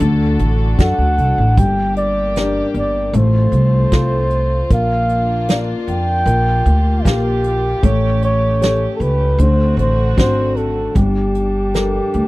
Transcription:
0.00 0.35 D2 loud
0.00 1.53 D3 medium
0.00 1.55 D3 medium
0.00 3.11 D4 medium
0.00 1.57 F#4 medium
0.00 1.55 A4 medium
0.00 closed hi-hat medium
0.39 0.74 A1 medium
0.39 closed hi-hat medium
0.78 0.96 F#2 medium
0.78 1.55 D4 soft
0.78 1.55 F#4 soft
0.78 1.56 A4 medium
0.78 1.60 F#5 loud
0.78 kick medium
0.78 snare medium
0.78 closed hi-hat medium
0.98 1.16 D2 medium
1.18 1.36 C2 medium
1.18 closed hi-hat medium
1.38 1.56 A1 medium
1.57 2.59 G1 medium
1.57 3.11 G3 medium
1.57 3.13 A#3 medium
1.57 3.13 G4 medium
1.57 1.96 G5 loud
1.57 kick medium
1.57 closed hi-hat medium
1.96 2.71 D5 medium
1.96 closed hi-hat soft
2.36 3.13 D4 soft
2.36 3.13 G4 soft
2.36 3.13 A#4 medium
2.36 snare medium
2.36 closed hi-hat medium
2.74 3.09 G1 medium
2.74 3.13 D5 medium
2.74 closed hi-hat soft
3.13 3.48 A1 loud
3.13 4.69 A3 medium
3.13 4.67 A3 medium
3.13 4.69 C4 medium
3.13 7.79 F4 medium
3.13 closed hi-hat medium
3.17 4.68 C5 medium
3.52 3.86 C2 medium
3.52 closed hi-hat soft
3.92 4.60 C2 medium
3.92 4.69 F4 soft
3.92 4.69 A4 soft
3.92 4.69 C5 medium
3.92 kick medium
3.92 snare medium
3.92 closed hi-hat medium
4.30 closed hi-hat soft
4.70 5.72 A#1 medium
4.70 6.23 A#3 medium
4.70 6.26 A#3 medium
4.70 6.26 D4 medium
4.70 5.59 F5 medium
4.70 kick medium
4.70 closed hi-hat medium
5.09 closed hi-hat soft
5.48 6.25 F4 soft
5.48 6.25 A#4 soft
5.48 6.25 D5 medium
5.48 snare medium
5.48 closed hi-hat medium
5.88 6.22 F2 medium
5.88 7.10 G5 loud
5.88 closed hi-hat medium
6.26 6.60 A#1 loud
6.26 7.79 A#3 medium
6.26 7.82 A#3 medium
6.26 9.37 G4 medium
6.26 closed hi-hat medium
6.66 7.00 D2 medium
6.66 closed hi-hat soft
7.05 7.73 A#1 medium
7.05 7.81 G4 soft
7.05 7.81 A#4 soft
7.05 7.81 F5 medium
7.05 kick medium
7.05 snare medium
7.05 closed hi-hat medium
7.09 7.86 G4 medium
7.44 closed hi-hat soft
7.83 8.85 A1 medium
7.83 10.93 A3 medium
7.83 9.36 A3 medium
7.83 9.39 C#4 medium
7.83 8.23 C#5 medium
7.83 kick medium
7.83 closed hi-hat medium
8.22 8.91 C#5 medium
8.22 closed hi-hat soft
8.61 9.37 G4 soft
8.61 9.38 A4 soft
8.61 9.38 C#5 medium
8.61 snare medium
8.61 closed hi-hat medium
8.96 9.03 A4 medium
9.00 9.34 C#2 medium
9.00 9.43 B4 medium
9.00 closed hi-hat soft
9.38 9.73 D2 loud
9.38 10.94 D3 medium
9.38 10.92 D3 medium
9.38 10.94 C4 medium
9.38 10.94 F#4 medium
9.38 9.78 C5 medium
9.38 closed hi-hat medium
9.77 10.12 A1 medium
9.77 10.15 C5 medium
9.77 closed hi-hat soft
10.17 10.85 G#1 medium
10.17 10.94 C4 soft
10.17 10.94 D4 soft
10.17 10.94 F#4 medium
10.17 10.58 C5 medium
10.17 kick medium
10.17 snare medium
10.17 closed hi-hat medium
10.56 10.98 A4 medium
10.56 closed hi-hat soft
10.95 11.97 G1 medium
10.95 12.28 G3 medium
10.95 12.28 D4 medium
10.95 12.28 G4 medium
10.95 kick medium
10.95 closed hi-hat medium
11.35 closed hi-hat soft
11.74 12.28 G4 soft
11.74 12.28 A4 soft
11.74 12.28 A#4 medium
11.74 snare medium
11.74 closed hi-hat medium
12.13 12.28 D2 medium
12.13 closed hi-hat soft

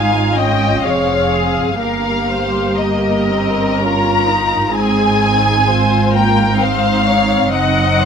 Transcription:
0.00 0.81 G#1 soft
0.00 0.81 G#2 soft
0.00 0.35 D#4 soft
0.00 0.83 F4 soft
0.00 0.37 F5 medium
0.00 0.36 G#5 medium
0.36 0.85 C#4 soft
0.36 0.85 D#5 medium
0.36 0.84 G5 medium
0.84 1.79 F1 soft
0.84 1.79 F2 soft
0.84 1.80 C4 soft
0.84 1.80 G#4 soft
0.84 1.33 C#5 medium
0.84 1.77 F5 medium
1.33 1.80 G#4 soft
1.79 4.70 G1 medium
1.79 4.70 G2 medium
1.79 2.75 A#3 soft
1.79 3.75 G4 soft
1.79 2.27 A#4 soft
1.79 2.74 F5 medium
2.29 2.77 C5 medium
2.76 3.27 A#3 soft
2.76 4.74 A#4 medium
2.76 3.79 D#5 medium
3.29 3.80 C4 soft
3.78 4.27 C#4 soft
3.78 4.74 F4 soft
3.78 4.73 A#5 medium
4.27 4.73 D#4 medium
4.73 7.50 G#1 medium
4.73 7.51 G#2 medium
4.73 5.66 C4 medium
4.73 5.20 D#4 medium
4.73 5.66 G#4 medium
4.73 6.15 G#5 medium
5.21 5.67 D#4 soft
5.68 6.14 C4 soft
5.68 6.62 F4 soft
5.68 6.15 C5 medium
6.14 6.60 A#3 medium
6.14 6.61 A#4 medium
6.14 6.60 G5 medium
6.62 8.05 C4 medium
6.62 7.53 D#4 medium
6.62 7.08 C5 medium
6.62 7.55 F5 medium
7.08 7.54 C#5 medium
7.54 8.05 F#1 medium
7.54 8.05 F#2 medium
7.54 8.05 D#4 medium
7.54 8.00 D#5 medium
7.54 8.05 F#5 medium
8.01 8.05 C5 medium

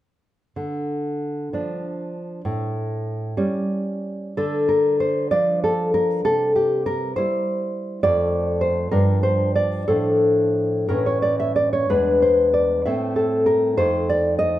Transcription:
0.56 1.50 D3 soft
1.53 2.41 F3 soft
1.53 2.41 D4 soft
2.45 3.34 A2 soft
3.37 4.34 G3 soft
3.37 4.34 C#4 soft
4.37 5.31 D3 soft
4.37 4.68 A4 medium
4.69 5.00 A#4 medium
5.00 5.31 C5 medium
5.31 6.21 F3 soft
5.31 6.21 D4 soft
5.31 5.62 D5 medium
5.64 5.94 A4 medium
5.94 6.24 A#4 medium
6.25 7.13 C3 medium
6.25 6.54 A4 medium
6.56 6.85 G4 medium
6.86 7.15 A#4 medium
7.16 8.00 G3 soft
7.16 8.00 E4 soft
7.16 8.00 C5 medium
8.03 8.90 F2 medium
8.03 8.88 A3 soft
8.03 8.89 F4 soft
8.03 8.59 D5 medium
8.61 8.91 C5 medium
8.91 9.86 G2 soft
8.91 9.84 F3 soft
8.91 9.85 D4 soft
8.91 9.22 A#4 medium
9.23 9.54 C5 medium
9.55 9.87 D5 medium
9.88 10.87 A2 soft
9.88 10.87 F3 soft
9.88 10.87 D4 soft
9.88 10.86 A4 medium
10.89 11.88 A2 soft
10.89 11.87 E3 soft
10.89 11.88 C#4 soft
10.89 11.07 A#4 medium
11.06 11.22 C#5 medium
11.22 11.39 D5 medium
11.40 11.55 E5 medium
11.56 11.72 D5 medium
11.73 11.90 C#5 medium
11.90 12.84 E2 soft
11.90 12.83 G#3 soft
11.90 12.83 D4 soft
11.90 12.21 B4 medium
12.22 12.53 C5 medium
12.54 12.85 D5 medium
12.86 13.78 A2 soft
12.86 13.76 A3 soft
12.86 13.76 C4 soft
12.86 13.17 E5 medium
13.16 13.47 A4 medium
13.46 13.78 A#4 medium
13.77 14.59 F2 soft
13.77 14.59 A3 soft
13.77 14.59 D#4 soft
13.77 14.09 C5 medium
14.09 14.38 D5 medium
14.39 14.59 D#5 medium

